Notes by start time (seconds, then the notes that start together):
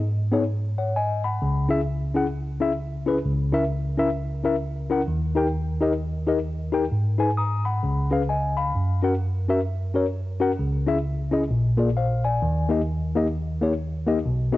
Already playing: G#2
0.32 B3 D#4 G#4 C#5
0.78 C#5 F#5
0.96 D#5 G#5
1.24 F#5 B5
1.42 C#2 C#3
1.69 C#4 E4 G#4 E5
2.15 C#4 E4 G#4 F#5
2.60 C#4 E4 G#4 E5
3.06 C#4 E4 G#4 B4
3.25 C#2 C#3
3.52 C#4 E4 A#4 E5
3.97 C#4 E4 A#4 E5
4.44 C#4 E4 A#4 E5
4.90 C#4 E4 A#4 F#5
5.08 D#2 D#3
5.35 D#4 G4 A#4 G5
5.81 D#4 G4 A#4 D#5
6.27 D#4 G4 A#4 D#5
6.72 D#4 G4 A#4 G5
6.92 G#2
7.18 D#4 G#4 B4 G#5
7.38 A#5 D#6
7.65 F#5 B5
7.83 C#2 C#3
8.11 C#4 G#4 B4 F5
8.29 D#5 G#5
8.57 F5 B5
8.75 F#2
9.03 C#4 F#4 A#4 F#5
9.48 C#4 F#4 A#4 E5
9.94 C#4 F#4 A#4 C#5
10.40 C#4 F#4 A#4 F#5
10.59 C#2 C#3
10.87 C#4 E4 G#4 E5
11.31 C#4 E4 G#4 D#5
11.51 A#1 A#2
11.77 A#3 F4 G#4 D5
11.97 C5 F5
12.24 D5 G#5
12.42 D#2 D#3
12.69 A#3 D#4 G4 D#5
13.15 A#3 D#4 G4 D#5
13.61 A#3 D#4 G4 C#5
14.07 A#3 D#4 G4 D#5
14.25 B1 B2
14.52 B3 D#4 F#4 G#4 D#5